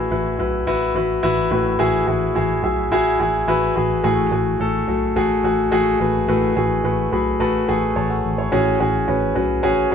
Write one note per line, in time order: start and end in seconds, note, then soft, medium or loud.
0.00 1.51 A2 medium
0.00 0.11 E4 medium
0.00 0.11 F#4 medium
0.00 1.80 G#4 medium
0.00 0.12 B4 medium
0.11 0.34 A1 medium
0.11 0.33 E4 medium
0.11 0.34 F#4 medium
0.11 0.34 B4 medium
0.39 0.62 B1 medium
0.39 0.61 E4 medium
0.39 0.62 F#4 medium
0.39 0.62 B4 medium
0.67 0.90 A1 medium
0.67 0.89 E4 medium
0.67 0.90 F#4 medium
0.67 0.90 B4 loud
0.95 1.18 A1 medium
0.95 1.18 E4 medium
0.95 1.18 F#4 medium
0.95 1.18 B4 medium
1.23 1.46 A1 medium
1.23 1.45 E4 loud
1.23 1.45 F#4 medium
1.23 1.46 B4 loud
1.51 1.74 A1 medium
1.51 2.32 A2 medium
1.51 1.73 E4 medium
1.51 1.74 F#4 medium
1.51 1.74 B4 medium
1.79 2.02 A1 medium
1.79 2.01 E4 medium
1.79 2.02 F#4 medium
1.79 2.02 G#4 loud
2.07 2.31 A1 medium
2.07 2.30 E4 medium
2.07 2.30 F#4 medium
2.07 2.30 G#4 medium
2.35 2.59 A1 medium
2.35 2.58 E4 medium
2.35 2.58 F#4 medium
2.35 2.58 G#4 medium
2.63 2.86 B1 medium
2.63 2.86 E4 medium
2.63 2.86 F#4 medium
2.63 2.86 G#4 medium
2.63 2.90 E5 medium
2.92 3.15 A1 medium
2.92 3.14 E4 medium
2.92 3.14 F#4 medium
2.92 3.14 G#4 loud
2.92 3.44 G#5 medium
3.19 3.42 A1 medium
3.19 3.42 E4 medium
3.19 3.42 F#4 medium
3.19 3.42 G#4 medium
3.48 3.71 A1 medium
3.48 3.70 E4 medium
3.48 3.70 F#4 medium
3.48 3.70 B4 loud
3.48 4.00 B5 medium
3.76 3.99 A1 medium
3.76 3.98 E4 medium
3.76 3.98 F#4 medium
3.76 3.98 G#4 medium
4.04 4.27 A1 medium
4.04 4.84 A2 medium
4.04 4.26 A3 medium
4.04 4.26 F#4 medium
4.04 4.26 G#4 medium
4.31 4.55 A1 medium
4.31 4.54 A3 medium
4.31 4.54 F#4 medium
4.31 4.54 G#4 medium
4.60 4.83 A1 medium
4.60 4.82 A3 medium
4.60 4.82 F#4 medium
4.60 4.82 A4 medium
4.88 5.11 B1 medium
4.88 5.10 A3 medium
4.88 5.10 F#4 medium
4.88 5.10 A4 medium
5.16 5.39 A1 medium
5.16 5.38 A3 medium
5.16 5.38 F#4 medium
5.16 5.38 G#4 medium
5.44 5.67 A1 medium
5.44 5.66 A3 medium
5.44 5.66 F#4 medium
5.44 5.66 G#4 medium
5.71 5.95 A1 medium
5.71 5.94 A3 medium
5.71 5.94 F#4 medium
5.71 5.94 G#4 loud
6.00 6.23 A1 medium
6.00 6.22 A3 medium
6.00 6.22 F#4 medium
6.00 6.23 B4 medium
6.28 6.51 A1 medium
6.28 7.08 A2 medium
6.28 6.50 A3 medium
6.28 6.50 F#4 medium
6.28 6.50 B4 medium
6.55 6.79 A1 medium
6.55 6.78 A3 medium
6.55 6.78 F#4 medium
6.55 6.78 G#4 medium
6.83 7.07 A1 medium
6.83 7.06 A3 medium
6.83 7.06 F#4 medium
6.83 7.06 B4 medium
7.12 7.35 B1 medium
7.12 7.34 A3 medium
7.12 7.34 F#4 medium
7.12 7.34 G#4 medium
7.12 7.38 B5 medium
7.40 7.63 A1 medium
7.40 7.62 A3 medium
7.40 7.62 F#4 medium
7.40 7.62 B4 medium
7.40 7.66 A5 medium
7.68 7.91 A1 medium
7.68 7.90 A3 medium
7.68 7.90 F#4 medium
7.68 7.91 G#4 medium
7.68 7.94 F#5 medium
7.96 8.19 A1 medium
7.96 8.10 C#5 medium
7.96 8.09 A5 medium
8.10 8.37 A4 soft
8.10 8.37 F#5 medium
8.25 8.47 A1 medium
8.38 8.65 E4 soft
8.38 8.65 C#5 medium
8.52 8.75 A1 medium
8.52 9.32 A2 medium
8.52 8.74 C#4 medium
8.52 8.74 F#4 medium
8.52 8.74 G#4 medium
8.80 9.03 A1 medium
8.80 9.02 C#4 medium
8.80 9.02 F#4 medium
8.80 9.02 G#4 medium
9.08 9.31 A1 medium
9.08 9.30 C#4 medium
9.08 9.30 F#4 medium
9.08 9.30 B4 medium
9.35 9.59 B1 medium
9.35 9.58 C#4 medium
9.35 9.58 F#4 medium
9.35 9.58 B4 medium
9.63 9.87 A1 medium
9.63 9.86 C#4 medium
9.63 9.86 F#4 medium
9.63 9.86 G#4 medium
9.92 9.95 C#4 medium